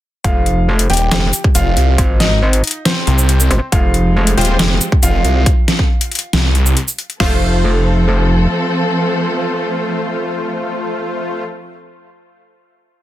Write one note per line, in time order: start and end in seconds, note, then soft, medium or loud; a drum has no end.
0.24 0.88 F1 loud
0.24 0.81 F4 medium
0.24 0.81 F5 loud
0.24 kick loud
0.24 closed hi-hat medium
0.46 closed hi-hat medium
0.79 closed hi-hat medium
0.90 1.10 D#1 loud
0.90 1.47 G4 medium
0.90 1.47 G5 loud
0.90 closed hi-hat medium
0.93 closed hi-hat medium
0.97 closed hi-hat medium
1.11 1.32 F1 loud
1.11 snare loud
1.11 closed hi-hat medium
1.33 closed hi-hat medium
1.33 shaker medium
1.44 kick loud
1.55 1.75 F1 loud
1.55 2.12 F4 medium
1.55 2.12 F5 medium
1.55 closed hi-hat medium
1.55 shaker medium
1.77 1.97 C2 loud
1.77 closed hi-hat medium
1.98 2.62 G#1 loud
1.98 kick loud
1.98 closed hi-hat medium
2.20 2.77 D#4 medium
2.20 2.77 D#5 loud
2.20 snare medium
2.20 closed hi-hat medium
2.53 closed hi-hat medium
2.64 closed hi-hat medium
2.67 closed hi-hat medium
2.71 closed hi-hat medium
2.85 3.64 C4 medium
2.85 3.64 C5 loud
2.85 snare loud
2.85 closed hi-hat medium
3.07 3.49 C2 loud
3.07 closed hi-hat medium
3.18 shaker medium
3.29 closed hi-hat medium
3.40 shaker medium
3.51 3.60 G#1 loud
3.51 closed hi-hat medium
3.72 4.36 F1 loud
3.72 5.45 F3 medium
3.72 5.45 G#3 medium
3.72 5.45 C4 medium
3.72 4.29 F4 medium
3.72 4.29 F5 loud
3.72 kick loud
3.72 closed hi-hat medium
3.94 closed hi-hat medium
4.27 closed hi-hat medium
4.37 4.58 D#1 loud
4.37 4.55 G#3 loud
4.37 4.55 F4 medium
4.37 4.94 G4 medium
4.37 4.55 C5 loud
4.37 4.94 G5 loud
4.37 closed hi-hat medium
4.41 closed hi-hat medium
4.45 closed hi-hat medium
4.59 4.79 F1 medium
4.59 snare loud
4.59 closed hi-hat medium
4.81 closed hi-hat medium
4.81 shaker medium
4.92 kick loud
5.03 5.23 F1 loud
5.03 5.46 F4 medium
5.03 5.46 F5 loud
5.03 closed hi-hat medium
5.03 shaker medium
5.25 5.45 C2 loud
5.25 closed hi-hat medium
5.46 kick loud
5.46 closed hi-hat medium
5.68 snare medium
5.68 closed hi-hat medium
5.79 kick medium
6.01 closed hi-hat medium
6.12 closed hi-hat soft
6.15 closed hi-hat medium
6.19 closed hi-hat medium
6.33 6.75 C2 loud
6.33 snare loud
6.33 closed hi-hat medium
6.55 closed hi-hat medium
6.66 shaker medium
6.77 closed hi-hat medium
6.88 shaker medium
6.98 closed hi-hat medium
7.10 closed hi-hat soft
7.20 8.47 F1 loud
7.20 11.44 F3 medium
7.20 11.44 A3 medium
7.20 11.44 C4 medium
7.20 11.44 F4 medium
7.20 11.44 A4 medium
7.20 11.44 C5 loud
7.20 11.69 F5 medium
7.20 kick loud
7.20 snare loud
7.20 crash medium